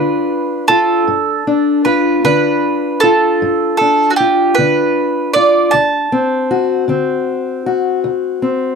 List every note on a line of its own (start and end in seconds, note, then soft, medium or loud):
0.00 0.62 D3 medium
0.00 1.47 D4 medium
0.00 0.68 F4 medium
0.00 0.65 B4 medium
0.68 1.04 F4 medium
0.68 1.81 A4 medium
1.07 1.77 G2 medium
1.47 2.25 D4 medium
1.85 3.02 F4 medium
1.85 2.23 B4 medium
2.24 2.94 D3 medium
2.24 3.81 D4 medium
2.24 3.04 B4 medium
3.00 4.18 F4 medium
3.00 3.76 A4 medium
3.42 4.11 G2 medium
3.77 4.59 D4 medium
3.77 4.11 A4 medium
4.10 4.16 F#4 medium
4.16 5.35 F4 medium
4.16 4.57 G4 medium
4.55 5.27 D3 medium
4.55 5.33 B4 medium
4.59 6.12 D4 medium
5.33 5.69 F4 medium
5.33 5.73 D5 medium
5.71 6.42 D2 medium
5.71 6.83 A5 medium
6.12 6.88 C4 medium
6.51 7.66 F#4 medium
6.88 7.57 D3 medium
6.88 8.41 C4 soft
7.66 8.75 F#4 medium
8.04 8.73 D2 medium
8.42 8.75 C4 soft